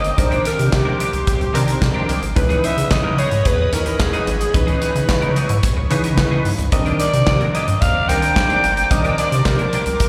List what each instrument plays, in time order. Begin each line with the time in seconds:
Already playing: analog synth bass G1, analog synth pad C5 G5 A#5 D6, alto saxophone D#5
0.04 muted clean electric guitar stroke, closed hi-hat
0.17 analog synth bass C2, analog polysynth D#3 C4 D4 A#4, alto saxophone C5, analog synth pad C6, muted clean electric guitar stroke, kick, closed hi-hat
0.31 clean electric guitar D#3 A#3 D4 G4, closed hi-hat
0.44 clean electric guitar D#3 A#3 D4 G4, alto saxophone A#4, closed hi-hat
0.58 analog synth bass C3, muted clean electric guitar stroke, closed hi-hat
0.72 analog synth bass C3, alto saxophone G4, muted clean electric guitar stroke, kick, snare, clap
0.85 clean electric guitar D#3 A#3 D4 A#4
0.99 clean electric guitar D#3 A#3 D4 G4, closed hi-hat
1.12 analog synth bass C2, muted clean electric guitar stroke, closed hi-hat
1.26 muted clean electric guitar stroke, kick, closed hi-hat
1.40 analog synth bass C2, muted clean electric guitar stroke, closed hi-hat
1.53 analog synth bass C3, clean electric guitar D#3 A#3 D4 G4, analog polysynth D#3 C4 D4 A#4, closed hi-hat
1.67 clean electric guitar D#3 A#3 D4 A#4, closed hi-hat
1.81 analog synth bass C3, muted clean electric guitar stroke, kick, snare, clap
1.94 clean electric guitar D#3 A#3 D4 G4
2.08 analog synth bass C2, clean electric guitar D#3 A#3 D4 G4, closed hi-hat
2.22 analog synth bass G#1, muted clean electric guitar stroke, closed hi-hat
2.36 analog synth bass C#2, analog polysynth E3 C#4 D#4 B4, alto saxophone B4, analog synth pad C#5 D#5 B5 D#6, muted clean electric guitar stroke, kick, closed hi-hat
2.49 clean electric guitar E3 B3 D#4 G#4, closed hi-hat
2.63 clean electric guitar E3 B3 D#4 G#4, alto saxophone E5, closed hi-hat
2.76 analog synth bass C#3, muted clean electric guitar stroke, closed hi-hat
2.90 analog synth bass C#3, alto saxophone D#5, muted clean electric guitar stroke, kick, snare, clap
3.04 clean electric guitar E3 B3 D#4 A#4
3.17 clean electric guitar E3 B3 D#4 G#4, alto saxophone C#5, closed hi-hat
3.31 analog synth bass G#2, muted clean electric guitar stroke, closed hi-hat
3.45 analog synth bass E2, alto saxophone B4, muted clean electric guitar stroke, kick, closed hi-hat
3.58 muted clean electric guitar stroke
3.73 analog synth bass D#2, analog polysynth E3 C#4 D#4 B4, alto saxophone A#4, closed hi-hat
3.86 muted clean electric guitar stroke, closed hi-hat
3.99 alto saxophone G#4, muted clean electric guitar stroke, kick, snare, clap
4.13 clean electric guitar E3 B3 D#4 G#4, closed hi-hat
4.26 analog synth bass G#1, muted clean electric guitar stroke, closed hi-hat
4.40 muted clean electric guitar stroke, closed hi-hat
4.54 analog synth bass C#2, analog polysynth E3 C#4 D#4 B4, alto saxophone B4, analog synth pad C#6, muted clean electric guitar stroke, kick, closed hi-hat
4.67 clean electric guitar E3 B3 D#4 G#4, closed hi-hat
4.81 clean electric guitar E3 B3 D#4 G#4, closed hi-hat
4.94 analog synth bass C#3, muted clean electric guitar stroke, closed hi-hat
5.08 analog synth bass C#3, muted clean electric guitar stroke, kick, snare, clap
5.21 clean electric guitar E3 B3 D#4 A#4, closed hi-hat
5.35 clean electric guitar E3 B3 D#4 G#4, closed hi-hat
5.49 analog synth bass G#2, muted clean electric guitar stroke, closed hi-hat
5.63 muted clean electric guitar stroke, kick, closed hi-hat
5.76 analog synth bass C#2, muted clean electric guitar stroke
5.90 analog synth bass C#3, clean electric guitar E3 B3 D#4 G#4, analog polysynth E3 C#4 D#4 B4, closed hi-hat
6.04 clean electric guitar E3 B3 D#4 A#4, closed hi-hat
6.17 analog synth bass C#3, muted clean electric guitar stroke, kick, snare, clap
6.31 clean electric guitar E3 B3 D#4 G#4
6.45 analog synth bass G2, muted clean electric guitar stroke, open hi-hat
6.58 analog synth bass C#2, muted clean electric guitar stroke, closed hi-hat
6.72 analog synth bass C2, analog polysynth D#3 C4 D4 A#4, analog synth pad C5 D5 A#5 D6, alto saxophone D#5, muted clean electric guitar stroke, kick, closed hi-hat
6.86 clean electric guitar D#3 A#3 D4 G4, closed hi-hat
6.99 clean electric guitar D#3 A#3 D4 G4, alto saxophone D5, closed hi-hat
7.13 analog synth bass C3, muted clean electric guitar stroke, closed hi-hat
7.27 analog synth bass C3, alto saxophone D5, muted clean electric guitar stroke, kick, snare, clap
7.40 clean electric guitar D#3 A#3 D4 A#4, closed hi-hat
7.54 clean electric guitar D#3 A#3 D4 G4, alto saxophone D#5, closed hi-hat
7.68 analog synth bass G2, muted clean electric guitar stroke, closed hi-hat
7.81 analog synth bass D#2, alto saxophone F5, muted clean electric guitar stroke, kick, closed hi-hat
7.95 muted clean electric guitar stroke
8.08 analog synth bass C2, clean electric guitar D#3 A#3 D4 G4, analog polysynth D#3 C4 D4 A#4, alto saxophone G5, closed hi-hat
8.22 clean electric guitar D#3 A#3 D4 A#4, closed hi-hat
8.36 muted clean electric guitar stroke, kick, snare, clap
8.49 clean electric guitar D#3 A#3 D4 G4, closed hi-hat
8.63 analog synth bass G1, muted clean electric guitar stroke, closed hi-hat
8.77 muted clean electric guitar stroke, closed hi-hat
8.90 analog synth bass C2, analog polysynth D#3 C4 D4 A#4, alto saxophone D#5, muted clean electric guitar stroke, kick, closed hi-hat
9.04 clean electric guitar D#3 A#3 D4 G4, closed hi-hat
9.18 clean electric guitar D#3 A#3 D4 G4, alto saxophone D5, closed hi-hat
9.31 analog synth bass C3, muted clean electric guitar stroke, closed hi-hat
9.45 analog synth bass C3, alto saxophone A#4, muted clean electric guitar stroke, kick, snare, clap
9.59 clean electric guitar D#3 A#3 D4 A#4, closed hi-hat
9.72 clean electric guitar D#3 A#3 D4 G4, closed hi-hat
9.86 analog synth bass C2, muted clean electric guitar stroke, closed hi-hat
9.99 muted clean electric guitar stroke, kick, closed hi-hat